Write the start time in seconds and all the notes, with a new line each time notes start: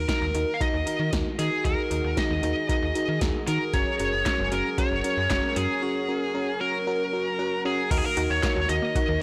Already playing: D#3 D#4 F#4 A#4
0.08 D#4 F#4 A#4, kick, snare, closed hi-hat
0.21 D#2
0.34 D#2 D#4 F#4 A#4, closed hi-hat
0.54 F5
0.60 D#4 F#4 A#4 D#5, kick, closed hi-hat
0.74 D#2
0.86 D#4 F#4 A#4, closed hi-hat
1.00 D#3
1.13 D#2 D#4 F#4 A#4, kick, snare, closed hi-hat
1.38 D#3 D#4 F#4 G#4 A#4, closed hi-hat
1.64 D#2 D#4 F#4 G#4 A#4, kick, closed hi-hat
1.90 D#2 D#4 F#4 A#4, closed hi-hat
2.04 D#2
2.17 D#4 F#4 A#4 D#5, kick, snare, closed hi-hat
2.30 D#2
2.43 D#2 D#4 F#4 A#4, closed hi-hat
2.69 D#4 F#4 A#4 D#5, kick, closed hi-hat
2.82 D#2
2.95 D#4 F#4 A#4, closed hi-hat
3.09 D#3
3.21 D#2 D#4 F#4 A#4, kick, snare, closed hi-hat
3.47 D#3 D#4 F#4 A#4, closed hi-hat
3.73 F#1 F#3 C#4 F#4 A#4 C#5, kick, closed hi-hat
3.99 F#1 C#4 F#4 A#4, closed hi-hat
4.13 F#1
4.26 C#4 F#4 A#4 C#5, kick, snare, clap, closed hi-hat
4.39 F#1
4.52 F#1 C#4 F#4 A#4, closed hi-hat
4.78 C#4 F#4 A#4 C#5, kick, closed hi-hat
4.91 F#1
5.04 C#4 F#4 A#4, closed hi-hat
5.17 F#2
5.30 F#1 C#4 F#4 C#5, kick, snare, clap, closed hi-hat
5.56 F#2 C#4 F#4 G#4 A#4, closed hi-hat
5.82 C#4 F#4 C#5
6.08 C#4 F#4 A#4
6.34 C#4 F#4 A#4
6.61 C#4 F#4 A#4
6.87 C#4 F#4 A#4
7.13 C#4 F#4 A#4
7.39 C#4 F#4 A#4 F#5
7.65 C#4 F#4 G#4 A#4
7.91 D#2 D#3 D#4 F#4 A#4, kick, closed hi-hat, crash
7.98 G#4
8.04 A#3 A#4
8.17 D#2 D#4 F#4 A#4, closed hi-hat
8.30 D#2 D#3 C#5
8.43 A#3 D#4 F#4 A#4, kick, snare, clap, closed hi-hat
8.56 D#2 F#4
8.69 D#2 D#3 D#4 F#4 A#4 D#5, closed hi-hat
8.82 A#3
8.95 D#4 F#4 A#4, kick, closed hi-hat
9.08 D#2 D#3